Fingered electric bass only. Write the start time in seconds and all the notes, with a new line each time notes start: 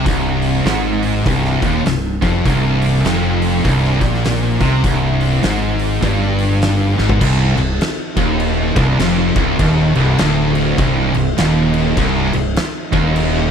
0.06 C1
0.65 G#1
1.26 C1
1.62 D#1
1.86 C1
2.23 F1
2.45 C1
3.04 F1
3.65 C1
4.01 A#1
4.61 C2
4.84 C1
5.44 G#1
6.03 G1
6.99 G#1
7.21 C1
7.57 C1
8.17 D#1
8.76 C1
8.98 F1
9.35 C1
9.59 D#1
9.96 C1
10.19 D1
10.78 C1
11.15 C1
11.38 D#1
11.97 C1
12.34 C1
12.93 D#1